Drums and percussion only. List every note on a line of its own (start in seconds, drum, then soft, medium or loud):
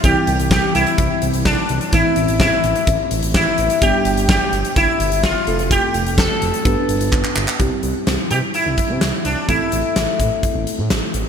0.04 kick loud
0.04 closed hi-hat medium
0.27 closed hi-hat medium
0.40 closed hi-hat medium
0.51 kick loud
0.51 snare loud
0.75 closed hi-hat medium
0.87 closed hi-hat medium
0.98 kick loud
0.98 closed hi-hat medium
1.22 closed hi-hat medium
1.34 closed hi-hat medium
1.45 kick loud
1.45 snare loud
1.69 closed hi-hat medium
1.81 closed hi-hat medium
1.93 kick loud
1.93 closed hi-hat medium
2.16 closed hi-hat medium
2.28 closed hi-hat medium
2.40 kick loud
2.40 snare loud
2.64 closed hi-hat medium
2.76 closed hi-hat medium
2.87 kick loud
2.87 closed hi-hat medium
3.11 closed hi-hat medium
3.23 closed hi-hat medium
3.34 kick loud
3.34 snare loud
3.58 closed hi-hat medium
3.70 closed hi-hat medium
3.82 kick loud
3.82 closed hi-hat medium
4.05 closed hi-hat medium
4.17 closed hi-hat medium
4.29 kick loud
4.29 snare loud
4.53 closed hi-hat medium
4.65 closed hi-hat medium
4.76 kick loud
4.76 closed hi-hat medium
5.00 closed hi-hat medium
5.12 closed hi-hat medium
5.23 kick loud
5.23 snare loud
5.47 closed hi-hat medium
5.59 closed hi-hat medium
5.71 kick loud
5.71 closed hi-hat medium
5.94 closed hi-hat medium
6.06 closed hi-hat medium
6.18 kick loud
6.18 snare loud
6.42 closed hi-hat medium
6.54 closed hi-hat medium
6.65 kick loud
6.65 closed hi-hat medium
6.89 closed hi-hat medium
7.01 closed hi-hat medium
7.13 kick loud
7.13 clap medium
7.24 clap medium
7.36 clap loud
7.48 clap loud
7.60 kick loud
7.60 closed hi-hat medium
7.83 closed hi-hat medium
8.07 snare loud
8.07 closed hi-hat medium
8.31 closed hi-hat medium
8.54 closed hi-hat medium
8.78 kick medium
8.78 closed hi-hat medium
9.01 snare loud
9.01 closed hi-hat medium
9.25 closed hi-hat medium
9.49 kick loud
9.49 closed hi-hat medium
9.72 closed hi-hat medium
9.96 snare loud
9.96 closed hi-hat medium
10.20 kick medium
10.20 closed hi-hat medium
10.43 kick medium
10.43 closed hi-hat medium
10.67 closed hi-hat medium
10.90 snare loud
10.90 closed hi-hat medium
11.14 closed hi-hat medium